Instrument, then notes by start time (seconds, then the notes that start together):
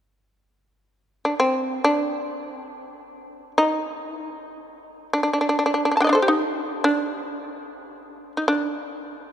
shamisen
1.25 D4
1.40 C4
1.84 D4
3.58 D#4
4.12 E4
4.26 D#4
4.42 E4
4.57 D#4
5.13 D4
5.23 D4
5.33 D4
5.41 D4
5.49 D4
5.59 D4
5.66 D4
5.74 D4
5.85 D4
5.91 D4
5.97 D4 A5
6.02 D#5 G5
6.07 D4 D5
6.13 A4 C5
6.22 G4
6.28 D#4
6.84 D4
8.37 D#4
8.48 D4